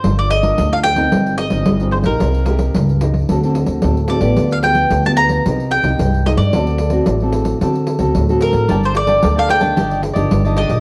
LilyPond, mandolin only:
\new Staff \with { instrumentName = "Mandolin" } { \time 4/4 \key g \minor \tempo 4 = 111 c''16 d''16 ees''8. f''16 g''4 ees''4 c''16 bes'16~ | bes'4.~ bes'16 r4. r16 d''8~ | d''16 f''16 g''8. a''16 bes''4 g''4 ees''16 d''16~ | d''4.~ d''16 r4. r16 bes'8~ |
bes'16 c''16 d''8. f''16 g''4 r4 ees''8 | }